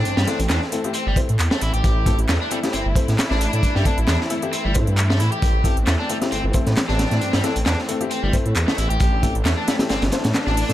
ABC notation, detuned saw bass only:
X:1
M:4/4
L:1/16
Q:"Swing 16ths" 1/4=134
K:Am
V:1 name="Detuned saw bass" clef=bass
G,, G,, z A,,, E,, z4 G,,, z A,, E,, z A,,, A,,, | A,,,3 A,,, E,, z3 G,,, G,,, z A,, z A,,,2 A,, | G,, G,, z A,,, E,, z4 G,,, A,, G,,3 A,, z | A,,,3 A,,, E,, z3 G,,, G,,, z A,, z A,,,2 A,, |
G,, G,, z A,,, E,, z4 G,,, z A,, E,, z A,,, A,,, | A,,,3 A,,, E,, z3 G,,, G,,, z A,, z A,,,2 A,, |]